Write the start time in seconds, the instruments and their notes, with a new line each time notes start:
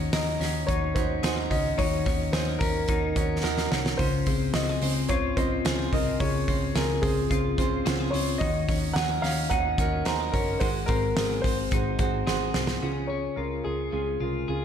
Already playing: clean electric guitar D#3 C#4, upright piano D#4 F#4 C#5
0.13 picked electric bass D#2, upright piano D#4 F#4 C#5 D#5, clean electric guitar A#4, snare, hi-hat pedal, open hi-hat
0.40 picked electric bass D#2, clean electric guitar C#4, upright piano D#4 F#4 C#5, snare, hi-hat pedal, open hi-hat
0.67 picked electric bass D#2, upright piano D#4 F#4 C#5, clean electric guitar D#4, kick, hi-hat pedal, open hi-hat
0.95 picked electric bass D#2, clean electric guitar C#4, upright piano D#4 F#4 C5 C#5, kick, hi-hat pedal, open hi-hat
1.23 picked electric bass D#2, upright piano D#4 F#4 C5, clean electric guitar G#4, snare, hi-hat pedal, open hi-hat
1.36 clean electric guitar A#4
1.50 picked electric bass C#2, clean electric guitar C#4, upright piano D#4 F#4 C#5 D#5, kick, hi-hat pedal, open hi-hat
1.78 picked electric bass D#2, clean electric guitar D#3, upright piano D#4 F#4 C#5, kick, hi-hat pedal, open hi-hat
2.05 picked electric bass D#2, clean electric guitar C#4, upright piano D#4 F#4 C#5, kick, hi-hat pedal, open hi-hat
2.33 picked electric bass D#2, upright piano D#4 F#4 C5 C#5, clean electric guitar G#4, snare, hi-hat pedal, open hi-hat
2.48 clean electric guitar A#4
2.59 picked electric bass D#2, clean electric guitar C#4, upright piano D#4 F#4 A#4 C#5, kick, hi-hat pedal, open hi-hat
2.88 picked electric bass D#2, upright piano D#4 F#4 C#5, clean electric guitar D#4, kick, hi-hat pedal, open hi-hat
3.16 picked electric bass D#2, clean electric guitar C#4, upright piano D#4 F#4 C#5, kick, hi-hat pedal, open hi-hat
3.43 picked electric bass D#2, upright piano D#4 F#4 A#4, clean electric guitar A#4, snare
3.58 snare
3.71 picked electric bass C2, clean electric guitar C#4, upright piano D#4 F#4 A#4 C#5, snare
3.86 snare
3.97 picked electric bass C#2, clean electric guitar C#3, upright piano C#4 F4 C5, kick, hi-hat pedal, open hi-hat
4.26 picked electric bass C#2, clean electric guitar C4, upright piano C#4 F4 G#4, kick, hi-hat pedal, open hi-hat
4.53 picked electric bass C#2, upright piano C#4 F4 C5 D#5, clean electric guitar F#4, snare, hi-hat pedal, open hi-hat
4.69 clean electric guitar G#4
4.81 picked electric bass C#2, clean electric guitar C4, upright piano C#4 F4 C5, hi-hat pedal, open hi-hat
5.08 picked electric bass C#2, upright piano C#4 F4 C5 C#5, clean electric guitar F4, kick, hi-hat pedal, open hi-hat
5.37 picked electric bass C#2, clean electric guitar C4, upright piano C#4 F4 C5 D#5, kick, hi-hat pedal, open hi-hat
5.65 picked electric bass C#2, upright piano C#4 F4 C5, clean electric guitar G#4, snare, hi-hat pedal, open hi-hat
5.93 picked electric bass C2, clean electric guitar C4, upright piano C#4 F4 A#4 D#5, kick, hi-hat pedal, open hi-hat
6.20 picked electric bass C#2, clean electric guitar C#3, upright piano C#4 F4 G#4 C#5, kick, hi-hat pedal, open hi-hat
6.48 picked electric bass C#2, clean electric guitar C4, upright piano C#4 F4 C#5, kick, hi-hat pedal, open hi-hat
6.75 picked electric bass C#2, upright piano C#4 F4 G#4 A#4, clean electric guitar G#4, snare, hi-hat pedal, open hi-hat
7.02 picked electric bass C#2, clean electric guitar C4, upright piano C#4 F4 G#4 C5, kick, hi-hat pedal, open hi-hat
7.30 picked electric bass C#2, upright piano C#4 F4 C5, clean electric guitar F4, kick, hi-hat pedal, open hi-hat
7.58 picked electric bass C#2, clean electric guitar C4, upright piano C#4 F4 C5, kick, hi-hat pedal, open hi-hat
7.85 picked electric bass C#2, upright piano C#4 F4 C5, clean electric guitar F#4, snare, hi-hat pedal, open hi-hat
8.00 clean electric guitar G#4
8.10 picked electric bass C#2, clean electric guitar C4, upright piano C#4 F4 C5 C#5, hi-hat pedal, open hi-hat
8.38 picked electric bass D#2, clean electric guitar D#3, upright piano D#4 F#4 C#5 D#5, kick, hi-hat pedal, open hi-hat
8.68 picked electric bass D#2, clean electric guitar C#4, upright piano D#4 F#4 C#5, kick, hi-hat pedal, open hi-hat
8.93 picked electric bass D#2, upright piano D#4 F#4 C#5 F#5, clean electric guitar G#4, snare, hi-hat pedal, open hi-hat
9.09 clean electric guitar A#4
9.22 picked electric bass D#2, clean electric guitar C#4, upright piano D#4 F#4 C#5 F5, snare, hi-hat pedal, open hi-hat
9.50 picked electric bass D#2, upright piano D#4 F#4 C#5 F#5, clean electric guitar D#4, kick, hi-hat pedal, open hi-hat
9.78 picked electric bass D#2, clean electric guitar C#4, upright piano D#4 F#4 A#4, kick, hi-hat pedal, open hi-hat
10.05 picked electric bass D#2, upright piano D#4 F#4 C5 A#5, clean electric guitar G#4, snare, hi-hat pedal, open hi-hat
10.20 clean electric guitar A#4
10.32 picked electric bass F#1, clean electric guitar C#4, upright piano D#4 F#4 A#4 C#5, kick, hi-hat pedal, open hi-hat
10.60 picked electric bass G#1, clean electric guitar G#2, upright piano F#4 G#4 C5, kick, hi-hat pedal, open hi-hat
10.86 picked electric bass G#1, clean electric guitar C4, upright piano F#4 G#4 A#4 C5, kick, hi-hat pedal, open hi-hat
11.16 picked electric bass G#1, upright piano F#4 G#4 C5, clean electric guitar G#4, snare, hi-hat pedal, open hi-hat
11.42 picked electric bass G#1, clean electric guitar C4, upright piano C5, kick, hi-hat pedal, open hi-hat
11.46 upright piano F#4 G#4
11.71 picked electric bass G#1, clean electric guitar D#4, upright piano F#4 G#4 C5, kick, hi-hat pedal, open hi-hat
11.99 picked electric bass G#1, clean electric guitar C4, upright piano F#4 G#4 C5, kick, hi-hat pedal, open hi-hat
12.27 picked electric bass G#1, upright piano F#4 G#4 C5, clean electric guitar G#4, snare
12.54 picked electric bass C2, clean electric guitar C4, upright piano F#4 G#4 C5, snare
12.67 snare
12.82 picked electric bass C#2, clean electric guitar C#3 G#4, upright piano C#4 F4 G#4
13.07 clean electric guitar C#4, upright piano C#4 F4 G#4 C#5
13.36 picked electric bass C#2, upright piano C#4 F4 G#4 A#4, clean electric guitar F4
13.64 picked electric bass C#2, upright piano C#4 F4 G#4, clean electric guitar G#4
13.92 picked electric bass C#2, clean electric guitar G#3, upright piano C#4 F4 G#4
14.21 picked electric bass C2, upright piano C#4 F4 A#4, clean electric guitar F4
14.48 picked electric bass C#2, upright piano C#4 F4 G#4, clean electric guitar G#4